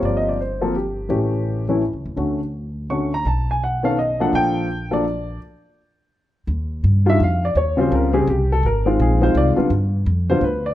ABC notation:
X:1
M:3/4
L:1/8
Q:"Swing" 1/4=168
K:Bb
V:1 name="Upright piano"
(3d e d c z G2- | G z4 z | z4 ^c' b | a _a ^f =f ^d ^f |
g3 d3 | z6 | [K:Eb] z3 _f =f d | _d c [=AB] _A G =A |
B E A c d z | z3 c =B d |]
V:2 name="Upright piano"
[F,B,CG]2 z [F,B,CA] z2 | [=E,A,^CG]3 [E,A,C=E] z2 | [D,A,^C^F] z3 [D,A,CF] z | z3 [^D,=B,^CA] z [F,_B,=DA]- |
[F,B,DA]2 z [F,B,DA] z2 | z6 | [K:Eb] z3 [E,G,DF] z2 | z [_D,G,CF]2 [D,G,CG] z2 |
z [E,A,CF]2 [E,A,CF]2 [D,G,_CF] | z3 [D,G,=B,F] z2 |]
V:3 name="Upright bass" clef=bass
G,,,6 | A,,,4- (3A,,, ^C,, E,, | D,,6 | =B,,,6 |
B,,,6 | z6 | [K:Eb] E,,2 G,,2 F,,2 | E,,2 _D,,2 C,,2 |
A,,,2 B,,,2 C,, z | G,,2 F,,2 D,,2 |]